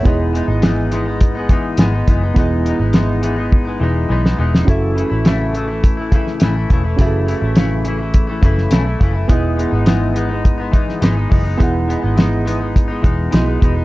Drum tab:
HH |x-x-x-x-x-x-x-x-|x-x-x-x---------|x-x-x-x-x-x-x-x-|x-x-x-x-x-x-x-x-|
SD |----o-------o---|----o--------o-o|----o------oo---|----o------oo---|
BD |o-------o-o---o-|o-------o-------|o-------o-o---o-|o-------o-o---o-|

HH |x-x-x-x-x-x-x-o-|x-x-x-x-x-x-x-x-|
SD |----o------oo---|----o-------o---|
BD |o-------o-o---o-|o-------o-o---o-|